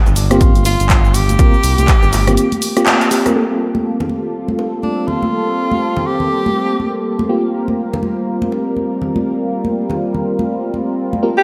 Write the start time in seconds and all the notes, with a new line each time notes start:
0.06 G1, high bongo, low conga, shaker
0.16 G1 D4, open hi-hat, shaker
0.31 A#3 C4 F4 G4, cross-stick, closed hi-hat, shaker
0.41 kick, closed hi-hat, shaker
0.55 closed hi-hat, high conga, shaker
0.65 F4, open hi-hat, high bongo, shaker
0.80 G1, closed hi-hat, shaker
0.89 kick, clap, closed hi-hat, high conga, shaker
1.05 shaker
1.14 G4, open hi-hat, low conga, shaker
1.29 closed hi-hat, high conga, shaker
1.39 C2 A#3 C4 F4 A#4, kick, closed hi-hat, shaker
1.54 shaker
1.64 C2, open hi-hat, shaker
1.78 C2, closed hi-hat, high conga, shaker
1.88 kick, clap, closed hi-hat, shaker
2.03 G1, high bongo, low conga, shaker
2.12 G1, clap, open hi-hat, high conga, shaker
2.27 A#3 C4 F4 G4, cross-stick, closed hi-hat, low conga, shaker
2.37 closed hi-hat, shaker
2.52 closed hi-hat, high conga, shaker
2.62 open hi-hat, shaker
2.77 A#3 C4 F4 G4, cross-stick, closed hi-hat, shaker
2.86 clap, closed hi-hat, high conga, shaker
3.01 closed hi-hat, shaker
3.11 A#3 C4 F4 G4, open hi-hat, shaker
3.26 A#3 C4 F4 A#4, cross-stick, closed hi-hat, high conga, shaker
3.36 G3 A#3 C4 F4 G4 A4
3.75 high conga
4.00 high bongo, low conga
4.09 high conga
4.48 high conga
4.59 high bongo
4.83 D4, high conga
5.08 F4, low conga
5.22 high conga
5.32 G4
5.71 high conga
5.96 high bongo, low conga
6.06 G4
6.20 low conga
6.46 high conga
6.80 high conga
7.19 high conga
7.29 A#3 C4 F4 G4 A#4
7.68 high conga
7.93 high bongo, low conga
8.03 high conga
8.42 high conga
8.52 high bongo
8.77 high conga
9.02 low conga
9.16 high conga
9.65 high conga
9.90 high bongo, low conga
10.14 low conga
10.39 high conga
10.74 high conga
11.13 high conga
11.23 A#3 C4 F4 G4 A#4 A5
11.37 G4